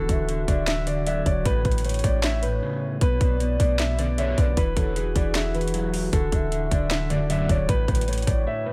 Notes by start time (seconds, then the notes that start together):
Already playing: D3 D4 F#4 A4
0.09 D1 D3 E5, kick, closed hi-hat
0.28 D3, closed hi-hat
0.48 D1 D3 D5, kick, closed hi-hat
0.67 D3 E5, snare, clap, closed hi-hat
0.87 D3 D5, closed hi-hat
1.06 F#3 D5 E5, closed hi-hat
1.26 D1 C#5 D5, kick, closed hi-hat
1.45 A1 A2 A3 E4 B4 C#5, kick, closed hi-hat
1.64 A1 A2 B4, kick, closed hi-hat
1.72 closed hi-hat
1.78 closed hi-hat
1.84 A2 C#5, closed hi-hat
1.89 closed hi-hat
1.94 closed hi-hat
1.99 closed hi-hat
2.04 A1 A2 D5, kick, closed hi-hat
2.23 A2 E5, snare, clap, closed hi-hat
2.42 A2 B4, closed hi-hat
2.63 C#3
3.01 B1 B2 D4 F#4 B4, kick, closed hi-hat
3.21 B1 B2 D5, kick, closed hi-hat
3.40 B2, closed hi-hat
3.59 B1 B2 D5, kick, closed hi-hat
3.79 B2 E5, snare, clap, closed hi-hat
3.99 F#2 B2 D3 D5, closed hi-hat
4.18 F#2 B2 D3 C#5 E5, closed hi-hat
4.38 B1 B4 D5, kick, closed hi-hat
4.57 E1 E3 E4 G#4 B4, kick, closed hi-hat
4.77 E1 E3 A4, kick, closed hi-hat
4.96 E3 G#4, closed hi-hat
5.16 E1 E3 D5, kick, closed hi-hat
5.35 E3 E5, snare, clap, closed hi-hat
5.54 E3 B4, closed hi-hat
5.61 closed hi-hat
5.68 closed hi-hat
5.74 F#3, closed hi-hat
5.94 open hi-hat
6.13 D1 D3 D4 A4, kick, closed hi-hat
6.32 D1 D3 E5, kick, closed hi-hat
6.52 D3, closed hi-hat
6.71 D1 D3 D5, kick, closed hi-hat
6.90 D3 E5, snare, clap, closed hi-hat
7.10 F#2 A2 D3 D5, closed hi-hat
7.30 F#2 A2 D3 F#3 D5 E5, closed hi-hat
7.49 D1 C#5 D5, kick, closed hi-hat
7.69 A1 A2 A3 E4 B4 C#5, kick, closed hi-hat
7.88 A1 A2 B4, kick, closed hi-hat
7.95 closed hi-hat
8.01 closed hi-hat
8.08 A2 C#5, closed hi-hat
8.13 closed hi-hat
8.18 closed hi-hat
8.22 closed hi-hat
8.27 A1 A2 D5, kick, closed hi-hat
8.47 A2 E5
8.65 A2 B4